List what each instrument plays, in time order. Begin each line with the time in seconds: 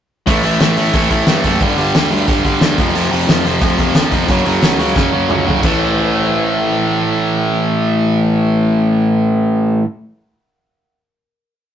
0.26 picked electric bass A1, distorted electric guitar A2 E3 A3, kick, open hi-hat
0.43 picked electric bass A1, distorted electric guitar A2 E3 A3, open hi-hat
0.61 picked electric bass A1, distorted electric guitar A2 E3 A3, snare, open hi-hat
0.77 picked electric bass A1, distorted electric guitar A2 E3 A3, open hi-hat
0.93 picked electric bass A1, distorted electric guitar A2 E3 A3, kick, open hi-hat
1.10 picked electric bass A1, distorted electric guitar A2 E3 A3, kick, open hi-hat
1.27 picked electric bass G2, distorted electric guitar A2 E3 A3, snare, open hi-hat
1.44 picked electric bass F#1, distorted electric guitar A2 E3 A3, kick, open hi-hat
1.61 picked electric bass G1, distorted electric guitar G2 D3 G3, kick, open hi-hat
1.77 picked electric bass G1, distorted electric guitar G2 D3 G3, open hi-hat
1.94 picked electric bass D2, distorted electric guitar G2 D3 G3, snare, open hi-hat
2.10 picked electric bass D2, distorted electric guitar G2 D3 G3, open hi-hat
2.27 picked electric bass G1, distorted electric guitar G2 D3 G3, kick, open hi-hat
2.44 picked electric bass G1, distorted electric guitar G2 D3 G3, kick, open hi-hat
2.61 picked electric bass D2, distorted electric guitar G2 D3 G3, snare, open hi-hat
2.77 picked electric bass F1, distorted electric guitar F2 C3 F3, kick, open hi-hat
2.94 picked electric bass F1, distorted electric guitar F2 C3 F3, open hi-hat
3.11 picked electric bass F1, distorted electric guitar F2 C3 F3, open hi-hat
3.28 picked electric bass F1, distorted electric guitar F2 C3 F3, snare, open hi-hat
3.44 picked electric bass F1, distorted electric guitar F2 C3 F3, open hi-hat
3.61 picked electric bass F1, distorted electric guitar F2 C3 F3, kick, open hi-hat
3.78 picked electric bass F1, distorted electric guitar F2 C3 F3, kick, open hi-hat
3.95 picked electric bass D2, distorted electric guitar F2 C3 F3, snare, open hi-hat
4.11 picked electric bass F1, distorted electric guitar F2 C3 F3, kick, open hi-hat
4.28 picked electric bass F#1, distorted electric guitar F#2 C#3 F#3, kick, open hi-hat
4.45 picked electric bass F#1, distorted electric guitar F#2 C#3 F#3, open hi-hat
4.62 picked electric bass C#2, distorted electric guitar F#2 C#3 F#3, snare, open hi-hat
4.78 picked electric bass C#2, distorted electric guitar F#2 C#3 F#3, open hi-hat
4.95 picked electric bass F#1, distorted electric guitar F#2 C#3 F#3, kick, snare
5.12 picked electric bass F#1, distorted electric guitar F#2 C#3 F#3
5.29 picked electric bass C#2, distorted electric guitar F#2 C#3 F#3, mid tom
5.45 picked electric bass F#1, distorted electric guitar F#2 C#3 F#3, floor tom
5.62 picked electric bass A1, distorted electric guitar A2 E3 A3, kick, crash